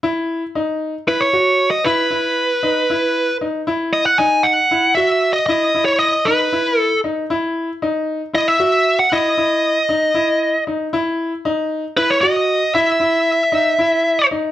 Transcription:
0.03 E4
0.55 D#4
1.07 E4 B4
1.21 C#5
1.33 F#4
1.71 D#5
1.84 E4 B4
2.11 E4
2.63 D#4
2.90 E4
3.41 D#4
3.67 E4
3.93 D#5
4.05 F#5
4.18 D#4 G#5
4.43 F#5
4.71 E4
4.95 F#4 E5
5.33 D#5
5.46 E4 D#5
5.75 E4
5.85 C#5
5.99 D#5
6.25 D#4 B4
6.53 E4
6.79 A4
7.04 D#4
7.30 E4
7.82 D#4
8.34 E4 D#5
8.48 E5
8.60 F#4
8.99 F#5
9.12 E4 D#5
9.38 E4
9.89 D#4
10.14 E4
10.67 D#4
10.93 E4
11.45 D#4
11.97 E4 B4
12.10 C#5
12.21 F#4 D#5
12.74 E4 E5
13.00 E4
13.52 D#4
13.79 E4
14.31 D#4

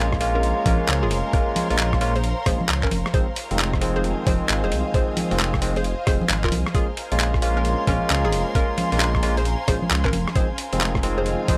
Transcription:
Already playing: A#1 G#3 A#3 C#4 F4 A#4 C5 C#5 F5 G#5
0.13 kick, cross-stick
0.21 G#3 A#3 C#4 F4, open hi-hat
0.35 C#4 A#4
0.43 closed hi-hat
0.65 A#1 G#3 A#3 C#4 F4 A#4 C6, kick, open hi-hat, high conga
0.88 C#2, clap, closed hi-hat
1.03 G#1 F4 G#4
1.11 F1, open hi-hat
1.33 G#3 A#3 C#4 F4 A#4 A#5, kick, closed hi-hat
1.56 open hi-hat, high conga
1.70 A#1 G#3 A#3 C#4 F4, open hi-hat
1.79 clap, closed hi-hat
1.93 kick, cross-stick
2.01 G#3 A#3 C#4 F4, open hi-hat
2.16 G#4 C5, closed hi-hat
2.24 closed hi-hat
2.46 A#1 G#3 A#3 C#4 F4 G#4 C5, kick, cross-stick, open hi-hat
2.61 high conga
2.69 C#2, clap, closed hi-hat
2.83 G#1 C#4 A#4, kick, clap
2.91 F1, open hi-hat, high conga
3.06 cross-stick
3.14 D#3 F3 G#3 C4 F4 G#4 C5 D#5 F5 G#5, kick, closed hi-hat
3.36 open hi-hat
3.51 F1 D#3 F3 G#3 C4, closed hi-hat
3.59 clap, closed hi-hat
3.73 C5, kick, cross-stick
3.81 D#3 F3 G#3 C4, open hi-hat
3.96 G#4 C5
4.04 closed hi-hat
4.27 F1 D#3 F3 G#3 C4 G#4 C5, kick, open hi-hat, high conga
4.49 G#1, clap, closed hi-hat
4.64 D#1 G#4 C5
4.72 C2, open hi-hat
4.94 D#3 F3 G#3 C4 G#4 C5, kick, closed hi-hat
5.17 open hi-hat, high conga
5.31 F1 D#3 F3 G#3 C4, open hi-hat
5.39 clap, closed hi-hat
5.54 kick, cross-stick
5.62 D#3 F3 G#3 C4, open hi-hat
5.76 G#4 C5, closed hi-hat
5.84 closed hi-hat
6.07 F1 D#3 F3 G#3 C4 G#4 C5, kick, cross-stick, open hi-hat
6.21 high conga
6.29 G#1, clap, closed hi-hat
6.44 D#1 F4 A#4, kick, clap
6.52 C2, open hi-hat, high conga
6.66 cross-stick
6.75 G#3 A#3 C#4 F4 G#4 A#4 G#5, kick, closed hi-hat
6.97 open hi-hat
7.12 A#1 G#3 A#3 C#4 F4, closed hi-hat
7.20 clap, closed hi-hat
7.31 F5, kick, cross-stick
7.36 C6
7.42 G#3 A#3 C#4 F4, open hi-hat
7.57 C#4 A#4
7.65 closed hi-hat
7.87 A#1 G#3 A#3 C#4 F4 A#4, kick, open hi-hat, high conga
8.10 C#2, clap, closed hi-hat
8.25 G#1 F4 G#4
8.32 F1, open hi-hat
8.55 G#3 A#3 C#4 F4 A#4, kick, closed hi-hat
8.78 open hi-hat, high conga
8.92 A#1 G#3 A#3 C#4 F4, open hi-hat
9.00 clap, closed hi-hat
9.15 kick, cross-stick
9.23 G#3 A#3 C#4 F4, open hi-hat
9.37 G#4 C5, closed hi-hat
9.45 closed hi-hat
9.68 A#1 G#3 A#3 C#4 F4 G#4 C5, kick, cross-stick, open hi-hat
9.82 high conga
9.90 C#2, clap, closed hi-hat
10.05 G#1 C#4 A#4, kick, clap
10.13 F1, open hi-hat, high conga
10.28 cross-stick
10.36 D#3 F3 G#3 C4 F4 G#4 C5 D#5 F5, kick, closed hi-hat
10.58 open hi-hat
10.73 F1 D#3 F3 G#3 C4, closed hi-hat
10.81 clap, closed hi-hat
10.95 kick, cross-stick
11.03 D#3 F3 G#3 C4, open hi-hat
11.18 G#4 C5
11.26 closed hi-hat
11.48 F1 D#3 F3 G#3 C4 G#4 C5, kick, open hi-hat, high conga

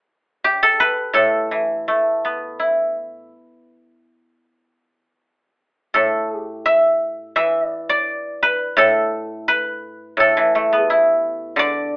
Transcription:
0.44 G4
0.63 A4
0.80 B4
1.13 A2 A4
1.51 E3
1.88 A3
2.25 B3
2.60 E4
5.94 A2 A4
6.38 G4
6.66 E5
7.36 E3 E5
7.68 D5
7.89 D5
8.43 B4
8.77 A2 A4
9.48 B4
10.17 A2 A4
10.37 E3
10.55 A3
10.72 B3 G#4
10.84 G4
10.90 E4
11.56 D3 D5

